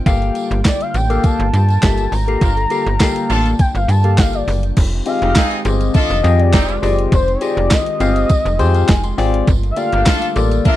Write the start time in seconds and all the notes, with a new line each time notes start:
Already playing: G5
0.06 G1 D3 G3 A#3 F4 G4 A4 F5, kick, closed hi-hat, tambourine
0.22 closed hi-hat
0.35 closed hi-hat, tambourine
0.51 G1, closed hi-hat
0.65 D5, kick, snare, clap, closed hi-hat, tambourine
0.81 F5, closed hi-hat
0.94 A1 G5, closed hi-hat, tambourine
1.10 A#3 G4 A4 F5, closed hi-hat, tambourine
1.23 A5, kick, closed hi-hat, tambourine
1.39 G1, closed hi-hat
1.53 G2, closed hi-hat, tambourine
1.69 closed hi-hat, tambourine
1.82 G1 A#3 G4 A4 E5, kick, snare, clap, closed hi-hat, tambourine
1.98 closed hi-hat, tambourine
2.12 G#1 A#5, open hi-hat, tambourine
2.27 A#3 G4 A4 F5, closed hi-hat
2.41 G1 D4 F4 A#4, kick, closed hi-hat, tambourine
2.57 A4 F5, closed hi-hat
2.70 A#3 G4 A4 F5, closed hi-hat, tambourine
2.86 G1, closed hi-hat
3.00 A#3 G4 A4 F5, kick, snare, clap, closed hi-hat, tambourine
3.16 closed hi-hat
3.30 A1 D4 F4 A4 A5, closed hi-hat, tambourine
3.46 closed hi-hat, tambourine
3.59 G5, kick, closed hi-hat, tambourine
3.75 G1 F5, closed hi-hat, tambourine
3.88 G2 A5, closed hi-hat, tambourine
4.04 A#3 G4 A4 F5, closed hi-hat
4.18 G1 F5, kick, snare, clap, closed hi-hat, tambourine
4.33 D5, closed hi-hat, tambourine
4.48 F#1, open hi-hat, tambourine
4.63 closed hi-hat
4.77 F1 D#3 G#3 C4 F4 G4, kick, closed hi-hat, crash, tambourine
4.93 closed hi-hat
5.06 C4 F4 G4 G#4 D#5 F5, closed hi-hat, tambourine
5.22 F1 C4 D#4 G4, closed hi-hat
5.35 C4 D#4 G#4, kick, snare, clap, closed hi-hat, tambourine
5.51 closed hi-hat
5.65 G1 C4 F4 G4 G#4 D#5, closed hi-hat, tambourine
5.81 closed hi-hat, tambourine
5.94 D4 F4 A4 D#5, kick, closed hi-hat, tambourine
6.10 F1, closed hi-hat, tambourine
6.23 F2 C4 F4 G4 G#4 D#5, closed hi-hat, tambourine
6.39 D5, closed hi-hat
6.53 F1 C4 D#4 G4, kick, snare, clap, closed hi-hat, tambourine
6.68 closed hi-hat, tambourine
6.82 F#1 C4 F4 G4 G#4 D5 D#5, open hi-hat, tambourine
6.99 closed hi-hat
7.12 F1 C5, kick, closed hi-hat, tambourine
7.28 closed hi-hat
7.35 C#5
7.41 C4 F4 G4 G#4 D5 D#5, closed hi-hat, tambourine
7.57 F1, closed hi-hat
7.71 D#5, kick, snare, clap, closed hi-hat, tambourine
7.86 closed hi-hat
8.00 G1 C4 F4 G4 G#4 F5, closed hi-hat, tambourine
8.16 closed hi-hat, tambourine
8.29 kick, closed hi-hat, tambourine
8.45 F1, closed hi-hat, tambourine
8.59 F2 C4 F4 G4 G#4 C5 D#5, closed hi-hat, tambourine
8.75 F5, closed hi-hat, tambourine
8.88 F1 G#5, kick, snare, clap, closed hi-hat, tambourine
9.04 C6, closed hi-hat, tambourine
9.18 G#1 C4 F4 G4 G#4 D5, open hi-hat, tambourine
9.34 closed hi-hat
9.47 G1 D3 G3 A3 A#3, kick, closed hi-hat, tambourine
9.63 closed hi-hat
9.71 E5
9.76 A#3 F4 G4 A4 D5 F5, closed hi-hat, tambourine
9.92 G1 A#3 D4 G4, closed hi-hat
10.06 D4 F4 A4, kick, snare, clap, closed hi-hat, tambourine
10.22 closed hi-hat
10.36 A1 A#3 F4 G4 A4 D5, closed hi-hat, tambourine
10.51 closed hi-hat, tambourine
10.65 D4 F4 A#4 E5, kick, closed hi-hat, tambourine